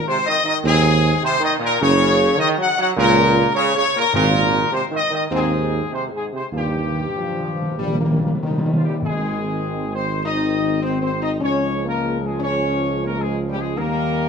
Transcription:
Already playing: G#2
0.06 C3 C5
0.26 D#3 D#5
0.44 D#3 D#5
0.64 D#2 G#2 G#3 C4 G#4
1.22 C3 C5
1.39 D#3
1.44 D#5
1.59 A#2
1.64 A#4
1.79 F#1 C#3 A#3 C#4 C#5
2.38 D#3 D#5
2.58 F#3 F#5
2.78 F#3 F#5
2.95 C#2 A#2 C#4 A#4
3.00 A#3
3.54 C#3 C#5
3.75 C#3 C#5
3.95 A#2 A#4
4.13 G#1 G#2 A#2 A#3 C4 A#4
4.71 C3 C5
4.90 D#3
4.94 D#5
5.10 D#3 D#5
5.30 D#2 G#2 A#3 C4
5.34 G#4
5.91 C3 C5
6.10 G#2
6.15 G#4
6.32 C3 C5
6.52 D#2 G2 D#3 A#3 F4 G4
6.68 D#3
6.76 D#3
6.84 D#3
6.92 D#3
7.00 D#3
7.09 D#3
7.16 D#3 F3
7.24 D#3
7.32 D#3
7.39 D#3
7.47 D#3
7.54 D#3
7.62 D#3
7.70 D#3
7.78 A#1 D#3 G3
7.86 D#3
7.95 D#3
8.01 D#3 A#3
8.11 D#3
8.18 D#3
8.23 D#3 A#3
8.35 D#3
8.43 D#3
8.51 D#3
8.58 D#3
8.66 D#3
8.74 D#3 F3 F4
8.81 D#3 G4
8.86 D#3 G3
9.02 G#1 G#2 D#3 G#3 C4 G#4
9.93 C4 C5
10.23 D#3 C4 D#4 D#5
10.82 D#3 C4 C5
11.02 C4 C5
11.22 D#4 D#5
11.40 C#2 F3 G#3 C#4 C#5
11.86 A#3 A#4
12.21 G#3 G#4
12.40 C#4 C#5
13.04 A#3 A#4
13.18 F3 G#3 G#4
13.49 G3 G4
13.59 G#3 G#4
13.77 D#2 D#3 G3 A#3 A#4

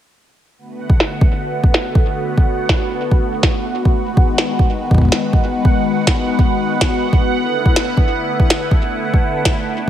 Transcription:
0.58 D3 A3 B3 F#4 B4 F#5
0.90 kick
1.00 snare
1.21 kick
1.64 kick
1.74 snare
1.95 kick
2.38 kick
2.69 kick, snare
3.11 kick
3.43 kick, snare
3.85 kick
3.96 D#3 G#3 B3
4.17 kick
4.38 snare
4.59 kick
4.91 kick
4.95 kick
4.98 kick
5.02 kick
5.05 kick
5.09 kick, snare
5.33 kick
5.65 kick
6.07 kick, snare
6.39 kick
6.81 kick, snare
7.13 kick
7.34 D3 A3 E4
7.66 kick
7.76 snare
7.97 kick
8.40 kick
8.50 snare
8.71 kick
9.14 kick
9.45 kick, snare

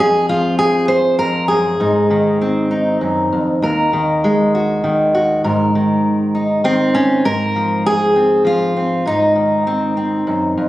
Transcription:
0.00 F2 G#4
0.29 F3 F4
0.59 G#4
0.88 C5
1.19 F2 A#4
1.48 F#2 G#4
1.80 G#2 D#4
2.10 D#3
2.41 C4
2.71 D#4
3.01 F#2
3.32 F2
3.62 D#2 A#4
3.93 D#3
4.24 G#3
4.55 F#4
4.84 D#3
5.15 F#4
5.44 G#2 A#4
5.75 D#3
6.35 D#4
6.64 D#3 C4
6.95 C#4
7.25 G#2 A#4
7.56 F3
7.86 G#4
8.16 C4
8.45 F3 F4
8.77 C4
9.06 G#2 D#4
9.36 D#3
9.67 C4
9.97 C4
10.27 F#2
10.57 F2

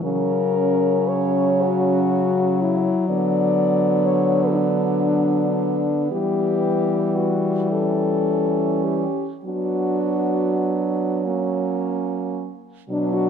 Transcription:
0.02 C#3 F#3 C#4 A#4
1.08 C#5
1.62 F#4
2.62 E4
3.08 D3 B3 D5
4.06 C#5
4.54 D4
6.11 E3 G3 G4
7.16 F#4
7.70 C#4 A4
8.85 G4
9.44 F#3 B3 D4 F#4
11.25 A#3 C#4
12.89 B2 F#3 D4
13.14 F#4

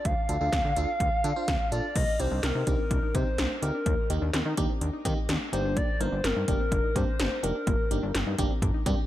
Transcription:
0.05 D2 F5, kick, closed hi-hat
0.29 D2 D4 F4 A4, closed hi-hat
0.41 D2 D4 F4 A4
0.52 D2, kick, snare, closed hi-hat
0.65 D3
0.76 D2 D4 F4 A4, closed hi-hat
1.00 D2, kick, closed hi-hat
1.24 D3 D4 F4 A4, closed hi-hat
1.36 D4 F4 C5
1.48 D2, kick, snare, closed hi-hat
1.72 A#1 D4 F4 A4 D5, closed hi-hat
1.96 C2 A#3 D#5, kick, closed hi-hat, crash
2.19 C2 C4 D#4 G4 C5, closed hi-hat
2.31 C2 D4
2.43 C2 C4 A#4, snare, closed hi-hat
2.55 C3 D#4
2.67 C2 C4 D4 D#4 G4 A#4, kick, closed hi-hat
2.79 C4
2.91 C2 D4, kick, closed hi-hat
3.03 D#4
3.15 C3 C4 D#4 G4 C5, kick, closed hi-hat
3.38 C2 D4, snare, closed hi-hat
3.62 D2 C4 D#4 G4 A#4, closed hi-hat
3.74 D4
3.86 D#2 A#3, kick, closed hi-hat
4.10 D#2 A#3 D#4 G4, closed hi-hat
4.22 D#2 D4
4.33 D#2 C4, snare, closed hi-hat
4.45 D#3 D#4
4.57 D#2 A#3 D4 D#4 G4, kick, closed hi-hat
4.69 C4
4.81 D#2 D4, closed hi-hat
4.93 D#4
5.05 D#3 A#3 C4 D#4 G4, kick, closed hi-hat
5.29 D#2 D4, snare, closed hi-hat
5.53 G1 A#3 D4 D#4 G4 C5, closed hi-hat
5.65 D4
5.76 A#3 D5, kick, closed hi-hat
6.00 G1 A#3 D4 D#4 A#4 C5, closed hi-hat
6.12 G1 D4
6.24 G1 C4 A#4, snare, closed hi-hat
6.36 G2 D#4
6.48 G1 A#3 D4 G4 A#4, kick, closed hi-hat
6.60 C4
6.72 G1 D4, kick, closed hi-hat
6.84 D#4
6.95 G2 A#3 C4 D4 G4 C5, kick, closed hi-hat
7.20 G1 D4, snare, closed hi-hat
7.43 F1 A#3 D4 D#4 G4 A#4, closed hi-hat
7.55 D4
7.67 G1 A#3, kick, closed hi-hat
7.91 G1 A#3 D4 D#4 G4, closed hi-hat
8.03 G1 D4
8.15 G1 C4, snare, closed hi-hat
8.26 G2 D#4
8.38 G1 A#3 D4 G4, kick, closed hi-hat
8.50 C4
8.62 G1 D4, kick, closed hi-hat
8.74 D#4
8.86 G2 A#3 C4 D4 G4, kick, closed hi-hat

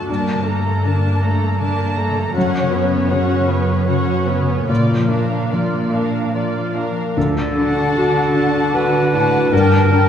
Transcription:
Already playing: A2 D3 F#3 D4 F#4
0.07 G2 A#3 D4 A#4 A5
0.33 D3
0.46 A3 A#3 A4 A#5
0.59 A#3
0.84 D3 A#3 D4 A#4 A5
1.22 A3 A#3 A4 A#5
1.35 A#3
1.59 D3 A#3 D4 A#4 A5
1.84 A#3
1.97 A3 A#3 A4 A#5
2.10 D3
2.34 F#2 C#4 F#4 C#5 F#5
2.60 C#3
2.73 B3 C#4 B4 C#5
2.84 B3
3.10 C#3 C#4 F#4 C#5 F#5
3.36 B4
3.49 B3 C#4 B4 C#5
3.62 B3
3.88 C#3 C#4 F#4 C#5 F#5
4.14 B3
4.27 B3 C#4 B4 C#5
4.41 C#3
4.69 A#2 A#3 F4 D5
4.96 F3
5.11 D4 A#4 F5
5.24 D4
5.51 F3 A#3 F4 D5
5.79 A#4
5.93 D4 A#4 F5
6.07 D4
6.34 F3 A#3 F4 D5
6.61 D4
6.75 D4 A#4 F5
6.89 F3
7.16 D2 D3 A4
7.43 D4
7.56 D4 F#4 F#5 A5
7.69 A5
7.95 D3 D4 F#4
8.21 F#4
8.33 D4 F#4 F#5 A5
8.74 D3 F#4 B4
9.00 D4
9.12 A2 D4 F#4 F#5 A5
9.52 G2 D4 A#4 G5 A5
9.79 D4
9.89 D4 A#4 G5 A5
10.06 A#4

